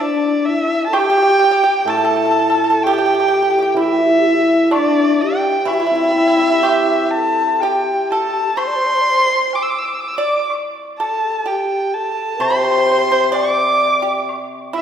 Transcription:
0.00 0.89 D4 medium
0.00 0.51 D4 medium
0.00 0.47 D5 medium
0.45 0.86 E5 medium
0.49 0.88 E4 medium
0.86 0.98 A4 medium
0.86 0.95 A5 medium
0.93 0.98 G4 medium
0.93 1.63 G4 medium
0.93 1.92 G5 loud
0.93 high woodblock medium
1.00 1.07 G4 medium
1.10 1.16 G4 medium
1.17 1.21 G4 soft
1.22 1.28 G4 medium
1.30 1.37 G4 soft
1.39 1.43 G4 medium
1.44 1.50 G4 soft
1.51 1.59 G4 medium
1.64 1.86 G4 medium
1.85 4.71 A2 medium
1.85 1.95 A4 medium
1.85 high woodblock soft
1.85 low woodblock soft
1.90 2.87 A4 medium
1.90 2.84 A5 medium
1.97 2.03 A4 medium
2.05 2.10 A4 medium
2.11 2.15 A4 soft
2.16 2.24 A4 soft
2.25 2.30 A4 soft
2.31 2.38 A4 soft
2.39 2.46 A4 soft
2.50 2.55 A4 soft
2.56 2.62 A4 soft
2.64 2.69 A4 medium
2.70 2.76 A4 medium
2.83 3.82 G4 medium
2.83 2.92 G4 medium
2.83 3.72 G5 loud
2.83 high woodblock soft
2.93 2.97 G4 medium
2.98 3.05 G4 medium
3.06 3.12 G4 medium
3.14 3.19 G4 soft
3.20 3.27 G4 soft
3.28 3.33 G4 soft
3.34 3.41 G4 soft
3.43 3.49 G4 soft
3.50 3.57 G4 soft
3.59 3.61 G4 medium
3.59 3.70 G4 soft
3.72 5.64 E3 medium
3.72 3.81 G5 medium
3.77 4.69 E4 medium
3.77 3.87 E4 medium
3.77 4.73 E5 medium
3.85 3.94 G4 medium
3.93 4.03 E4 medium
4.01 4.09 G4 medium
4.08 4.20 E4 medium
4.18 4.28 G4 medium
4.27 4.36 E4 medium
4.35 4.43 G4 medium
4.41 4.77 E4 medium
4.71 5.64 D4 medium
4.71 5.23 D5 medium
4.71 high woodblock medium
4.76 5.24 D4 medium
5.21 5.73 G4 medium
5.21 5.69 G5 medium
5.65 8.57 E3 medium
5.65 5.72 E4 medium
5.65 7.13 E5 medium
5.65 high woodblock soft
5.65 low woodblock soft
5.71 6.87 E4 medium
5.71 5.79 E4 soft
5.80 5.85 E4 medium
5.87 5.94 E4 soft
5.91 7.85 C4 soft
5.95 6.02 E4 soft
6.04 6.10 E4 soft
6.11 6.17 E4 soft
6.16 8.10 E4 soft
6.16 6.26 E4 soft
6.27 6.35 E4 soft
6.37 6.40 E4 soft
6.37 8.35 G4 soft
6.41 6.49 E4 medium
6.51 6.58 E4 soft
6.63 7.57 G4 medium
6.63 8.58 C5 soft
6.63 high woodblock soft
7.11 7.63 A5 medium
7.16 7.62 A4 medium
7.60 8.57 G4 medium
7.60 8.08 G4 medium
7.60 8.13 G5 medium
7.60 low woodblock soft
8.11 8.56 A4 medium
8.11 8.60 A5 medium
8.57 9.50 C5 medium
8.57 8.69 C5 medium
8.57 9.57 C6 loud
8.57 high woodblock medium
8.67 8.77 D5 medium
8.76 8.87 C5 medium
8.86 8.96 D5 medium
8.95 9.03 C5 medium
9.01 9.11 D5 medium
9.10 9.32 C5 medium
9.33 9.54 C5 medium
9.53 9.64 D6 medium
9.53 high woodblock soft
9.53 low woodblock soft
9.63 9.72 E6 medium
9.70 9.81 D6 medium
9.79 9.87 E6 medium
9.85 9.96 D6 medium
9.94 10.02 E6 medium
10.01 10.10 D6 medium
10.08 10.18 E6 medium
10.16 10.48 D5 medium
10.16 10.49 D5 medium
10.16 10.49 D6 medium
10.50 high woodblock soft
10.99 11.28 A4 medium
10.99 11.44 A4 medium
10.99 11.49 A5 medium
11.28 11.44 G4 medium
11.46 12.37 G4 medium
11.46 11.96 G4 medium
11.46 11.96 G5 medium
11.94 12.43 A4 medium
11.94 12.43 A5 medium
12.39 14.82 C3 medium
12.39 12.47 C5 medium
12.39 13.10 C5 medium
12.39 13.37 C6 loud
12.39 high woodblock medium
12.50 12.54 C5 medium
12.56 12.63 C5 medium
12.64 12.70 C5 soft
12.71 12.77 C5 soft
12.78 12.85 C5 soft
12.86 12.90 C5 medium
12.91 12.97 C5 soft
12.98 13.06 C5 medium
13.11 13.36 C5 medium
13.11 13.31 C5 medium
13.32 14.00 D5 medium
13.32 14.29 D5 medium
13.32 14.29 D6 medium
13.32 high woodblock soft
13.32 low woodblock soft
14.02 14.26 G4 medium
14.29 high woodblock soft
14.73 14.82 E4 medium
14.73 14.82 E5 medium

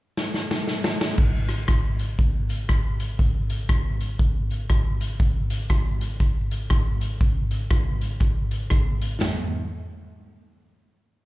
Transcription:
0.17 snare medium
0.34 snare medium
0.51 snare medium
0.67 snare medium
0.84 snare loud
1.01 snare loud
1.17 kick loud
1.17 crash medium
1.17 cabasa soft
1.49 cross-stick medium
1.49 closed hi-hat medium
1.49 cabasa medium
1.68 kick loud
1.68 cross-stick loud
1.68 closed hi-hat medium
1.68 cabasa medium
1.99 closed hi-hat medium
1.99 cabasa medium
2.19 kick loud
2.19 closed hi-hat medium
2.19 cabasa soft
2.49 closed hi-hat medium
2.49 cabasa medium
2.69 kick medium
2.69 cross-stick loud
2.69 closed hi-hat medium
2.69 cabasa medium
3.00 closed hi-hat medium
3.00 cabasa medium
3.18 kick loud
3.18 closed hi-hat medium
3.18 cabasa soft
3.50 closed hi-hat medium
3.50 cabasa medium
3.69 kick loud
3.69 cross-stick loud
3.69 closed hi-hat medium
3.69 cabasa soft
4.00 closed hi-hat medium
4.00 cabasa medium
4.19 kick loud
4.19 closed hi-hat medium
4.19 cabasa soft
4.50 closed hi-hat medium
4.50 cabasa medium
4.70 kick loud
4.70 cross-stick loud
4.70 closed hi-hat medium
4.70 cabasa medium
5.01 closed hi-hat loud
5.01 cabasa loud
5.19 kick loud
5.19 closed hi-hat medium
5.19 cabasa soft
5.50 closed hi-hat loud
5.50 cabasa medium
5.69 kick loud
5.69 cross-stick loud
5.69 closed hi-hat medium
5.69 cabasa soft
6.01 closed hi-hat medium
6.01 cabasa medium
6.20 kick loud
6.20 cross-stick medium
6.20 closed hi-hat medium
6.20 cabasa soft
6.51 closed hi-hat medium
6.51 cabasa medium
6.70 kick loud
6.70 cross-stick medium
6.70 closed hi-hat medium
6.70 cabasa medium
7.01 closed hi-hat medium
7.01 cabasa medium
7.19 kick loud
7.19 closed hi-hat medium
7.19 cabasa soft
7.51 closed hi-hat medium
7.51 cabasa medium
7.70 kick loud
7.70 cross-stick loud
7.70 closed hi-hat medium
7.70 cabasa medium
8.01 closed hi-hat medium
8.01 cabasa medium
8.20 kick loud
8.20 cross-stick medium
8.20 closed hi-hat medium
8.20 cabasa soft
8.51 closed hi-hat medium
8.51 cabasa medium
8.70 kick loud
8.70 cross-stick medium
8.70 closed hi-hat medium
8.70 cabasa medium
9.01 closed hi-hat medium
9.01 cabasa medium
9.21 snare loud
9.21 floor tom loud
9.21 ride bell medium
9.21 cabasa medium

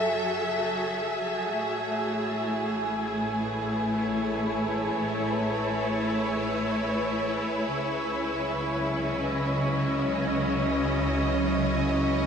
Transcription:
0.00 1.49 F#1 medium
0.00 1.54 F#3 medium
0.00 2.86 F#4 medium
0.00 9.85 G#4 medium
0.00 1.53 A4 medium
0.00 7.71 C#5 medium
0.00 3.12 E5 medium
0.00 7.70 C#6 medium
1.53 7.70 A1 medium
1.53 7.74 A3 medium
1.95 12.26 E4 medium
2.99 12.26 B4 medium
3.70 9.67 C#5 medium
7.71 12.26 C#2 medium
7.71 12.26 C#3 medium
7.71 12.26 F#3 medium
7.71 12.26 C#4 medium
7.71 12.26 C#5 medium
7.71 12.26 C#6 soft
8.12 12.26 C#4 medium
8.98 12.26 D#5 medium

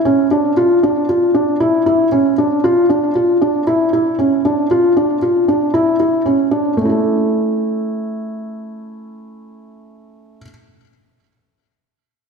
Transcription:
0.05 0.26 C#4 medium
0.31 0.52 D4 medium
0.57 0.78 F4 medium
0.83 1.04 D4 medium
1.09 1.30 F4 medium
1.34 1.55 D4 medium
1.60 1.81 E4 medium
1.86 2.07 E4 medium
2.12 2.33 C#4 medium
2.38 2.59 D4 medium
2.64 2.85 F4 medium
2.89 3.10 D4 medium
3.15 3.36 F4 medium
3.42 3.62 D4 medium
3.67 3.88 E4 medium
3.93 4.14 E4 medium
4.19 4.40 C#4 medium
4.45 4.66 D4 medium
4.71 4.92 F4 medium
4.97 5.18 D4 medium
5.22 5.43 F4 medium
5.48 5.69 D4 medium
5.74 5.95 E4 medium
6.00 6.21 E4 medium
6.26 6.47 C#4 medium
6.51 6.72 D4 medium
6.77 10.35 A3 medium
6.81 10.39 C#4 medium
6.85 10.43 E4 medium
6.89 10.47 A4 medium

